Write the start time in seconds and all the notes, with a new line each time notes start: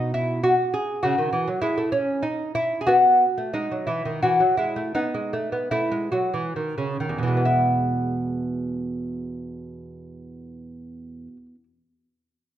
Already playing: B2 D#4
0.14 E4
0.43 F#4
0.74 G#4
1.03 C#3 F#4
1.18 D#3
1.33 E3
1.48 F#3
1.62 G#3 E4
1.77 A3
1.92 C#4
2.23 D#4
2.55 E4
2.81 G#4
2.87 B3 F#4
3.38 A3
3.54 G#3 D#4
3.71 F#3
3.87 E3 E4
4.05 D#3
4.23 E3 F#4
4.40 F#3
4.57 G#3 E4
4.76 A3
4.95 B3 D#4
5.14 G#3
5.33 A3
5.52 B3
5.71 A3 E4
5.91 G#3
6.12 F#3 F#4
6.34 E3
6.56 D#3
6.78 C#3
7.00 D#3
7.09 E2
7.18 B2
7.23 E3
7.28 G#3
7.37 B3
7.45 E4